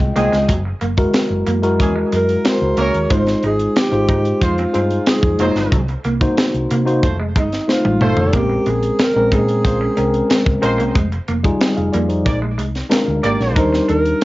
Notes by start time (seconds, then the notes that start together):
Already playing: G3 G#3 F4 G#4 D#5 G5
0.00 C2, kick
0.16 C2 D#3 G#3 A#3 C4 F4 G#4 D#5 G5, closed hi-hat
0.32 C#2 G#3, snare, closed hi-hat
0.48 F#1 F#3, kick, closed hi-hat
0.65 muted clean electric guitar stroke
0.81 F#1 A#3, closed hi-hat
0.97 G#3 E4 F#4 A#4, kick, closed hi-hat
1.14 snare, closed hi-hat
1.30 F#1
1.46 F#2 A#3, closed hi-hat
1.62 G#3 E4 F#4 A#4, closed hi-hat
1.79 E2 E3 C#4 G#4, muted clean electric guitar stroke, kick, closed hi-hat
1.96 G#3
2.12 F#2 G#3 A#4, closed hi-hat
2.29 closed hi-hat
2.45 G#3 E4 F#4 G#4 C5, snare, closed hi-hat
2.52 A#4
2.61 C#2
2.77 C#2 E3 A#3 C#4 A#4, closed hi-hat
2.81 C#5
2.94 D#2, closed hi-hat
3.10 G#1 G#3 D#4 F4 C5, kick, closed hi-hat
3.27 muted clean electric guitar stroke, snare, closed hi-hat
3.43 G#1 D#4 G#4, closed hi-hat
3.59 closed hi-hat
3.76 G4, snare, closed hi-hat
3.92 G#1 G#3 D#4 F4 C5, closed hi-hat
4.09 G#2 D#4, kick, closed hi-hat
4.25 closed hi-hat
4.41 F2 G#3 F4 C5, muted clean electric guitar stroke, kick, closed hi-hat
4.58 C4, closed hi-hat
4.73 G2 C4 D#4 F4 G#4 C5, closed hi-hat
4.90 closed hi-hat
5.06 G#4, muted clean electric guitar stroke, snare, closed hi-hat
5.23 F2, kick
5.39 F1 F#3 G#3 A#3 D#4 F4 C5, closed hi-hat
5.56 G1 G#3, snare, closed hi-hat
5.72 C2 F#3, kick, closed hi-hat
5.88 muted clean electric guitar stroke, closed hi-hat
6.04 C2 A#3, closed hi-hat
6.21 A#3 D#4 F#4 C5, kick, closed hi-hat
6.38 snare, closed hi-hat
6.54 C2, closed hi-hat
6.71 C3 A#3, closed hi-hat
6.86 A#3 D#4 F#4 C5, closed hi-hat
7.03 F1 A3 F4 C5, muted clean electric guitar stroke, kick, closed hi-hat
7.19 G#3
7.36 G1 G#3 D#4, kick, closed hi-hat
7.53 snare, closed hi-hat
7.68 A3 D#4 F4 C5, snare
7.85 A1, high tom
8.01 G1 A3 F4 A4 C5, mid tom
8.17 F1, floor tom
8.33 A#1 G#3 A#3 C4 C#4 G4 A#4, kick, closed hi-hat
8.50 muted clean electric guitar stroke
8.66 A#1 G#3 G#4, closed hi-hat
8.83 closed hi-hat
8.99 A#4, snare, closed hi-hat
9.15 A#1 G#3 C4 C#4 A#4
9.32 A#2 D#4 G#4, kick, closed hi-hat
9.48 closed hi-hat
9.64 A#1 G#3 F4 C5, muted clean electric guitar stroke, kick, closed hi-hat
9.81 C#4
9.96 C2 G#3 C4 C#4 A#4, closed hi-hat
10.14 closed hi-hat
10.30 muted clean electric guitar stroke, snare, closed hi-hat
10.46 C#2, kick
10.62 A#1 G#3 C4 C#4 F4 A#4 C5, closed hi-hat
10.78 C2 A#3, closed hi-hat
10.95 F1 G#3, kick, closed hi-hat
11.12 muted clean electric guitar stroke, closed hi-hat
11.28 F1 A#3, closed hi-hat
11.44 G3 D#4 F4 G#4, kick, closed hi-hat
11.61 snare, closed hi-hat
11.77 F1 G#4 F5, closed hi-hat
11.93 F2 A#3 F4 D5, closed hi-hat
12.09 D#4 C5, closed hi-hat
12.25 A#1 A#3 G#4 D5, muted clean electric guitar stroke, kick, closed hi-hat
12.42 G#3
12.58 C2 G#3, closed hi-hat
12.75 snare, closed hi-hat
12.90 G#3 D4 F4 A#4, snare, closed hi-hat
13.08 D2
13.23 G#1 A#3 G4 D5, closed hi-hat
13.40 A#1, snare, closed hi-hat
13.56 D#2 G3 D4 D#4 A#4 C5, kick, closed hi-hat
13.73 muted clean electric guitar stroke, snare
13.88 D#2 D4 A#4, closed hi-hat
14.05 closed hi-hat